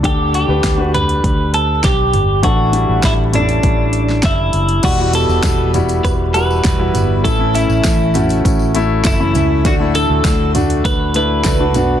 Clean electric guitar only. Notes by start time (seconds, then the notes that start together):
0.05 G4
0.35 G4
0.79 F#4
0.95 B4
1.54 A4
1.84 G4
2.44 F#4
3.05 E4
3.35 D4
4.25 E4
4.85 F#4
5.15 A4
6.05 B4
6.34 B4
7.25 A4
7.55 E4
9.07 E4
9.66 F#4
9.95 A4
10.85 B4
11.16 B4